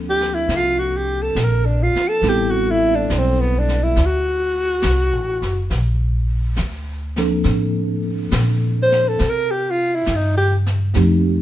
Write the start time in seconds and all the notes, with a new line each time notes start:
Already playing: D2 F3 A#3 C4 D4 A4
0.09 G4
0.20 snare
0.34 E4
0.48 C2, brush sweep, snare
0.56 F4
0.79 F#4
0.97 G4
1.22 A4
1.35 A#1, snare, hi-hat pedal
1.44 A#4
1.65 D4
1.83 F4
1.95 muted upright bass stroke, snare
2.08 A4
2.22 A1 G3 B3 C4 E4 A4, brush sweep, snare
2.29 G4
2.51 F#4
2.70 E4
2.95 D4
3.10 B1, snare, hi-hat pedal
3.18 C4
3.40 B3
3.59 D4
3.69 snare
3.83 E4
3.96 D2, brush sweep, snare
4.05 F#4
4.82 C2, snare, hi-hat pedal
5.13 A1
5.42 F#1, snare
5.70 A#1, brush sweep, snare
6.57 D2, snare, hi-hat pedal
7.16 F3 A#3 C4 D4 A4, snare
7.44 A2, brush sweep, snare
8.32 A#2, snare, hi-hat pedal
8.82 C5
8.92 snare
9.08 A4
9.19 C3, brush sweep, snare
9.29 A#4
9.51 G4
9.70 F4
9.95 E4
10.06 G2, snare, hi-hat pedal
10.15 D#4
10.37 G4
10.66 snare
10.94 F2 F3 A3 C4 D#4 G4, brush sweep, snare